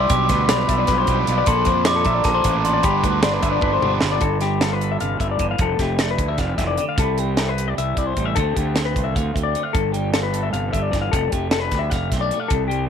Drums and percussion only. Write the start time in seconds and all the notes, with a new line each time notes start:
0.10 kick, closed hi-hat
0.29 kick, snare, closed hi-hat
0.49 snare, closed hi-hat
0.69 kick, closed hi-hat
0.87 kick, snare, closed hi-hat
1.07 kick, closed hi-hat
1.27 closed hi-hat
1.46 kick, closed hi-hat
1.65 kick, closed hi-hat
1.85 snare, closed hi-hat
2.04 kick, closed hi-hat
2.24 kick, snare, closed hi-hat
2.44 kick, closed hi-hat
2.65 closed hi-hat
2.83 kick, closed hi-hat
3.04 kick, closed hi-hat
3.23 snare, closed hi-hat
3.43 kick, closed hi-hat
3.61 kick, high tom
3.82 mid tom
4.01 snare
4.21 kick, closed hi-hat
4.41 snare, closed hi-hat
4.61 snare, closed hi-hat
4.81 closed hi-hat
5.00 closed hi-hat
5.20 kick, closed hi-hat
5.39 kick, closed hi-hat
5.58 kick, closed hi-hat
5.79 kick, snare, closed hi-hat
5.99 snare, closed hi-hat
6.18 kick, closed hi-hat
6.38 kick, snare, closed hi-hat
6.58 kick, snare, closed hi-hat
6.78 closed hi-hat
6.98 kick, closed hi-hat
7.18 closed hi-hat
7.37 snare, closed hi-hat
7.58 closed hi-hat
7.78 closed hi-hat
7.97 kick, closed hi-hat
8.17 kick, closed hi-hat
8.36 kick, closed hi-hat
8.57 kick, closed hi-hat
8.76 snare, closed hi-hat
8.96 kick, closed hi-hat
9.16 kick, closed hi-hat
9.36 kick, closed hi-hat
9.55 closed hi-hat
9.75 kick, closed hi-hat
9.94 closed hi-hat
10.14 snare, closed hi-hat
10.34 closed hi-hat
10.54 closed hi-hat
10.73 kick, closed hi-hat
10.93 kick, snare, closed hi-hat
11.13 kick, closed hi-hat
11.32 kick, closed hi-hat
11.51 snare, closed hi-hat
11.71 kick, snare, closed hi-hat
11.91 kick, snare, closed hi-hat
12.12 kick, snare, closed hi-hat
12.31 closed hi-hat
12.50 kick, closed hi-hat
12.71 closed hi-hat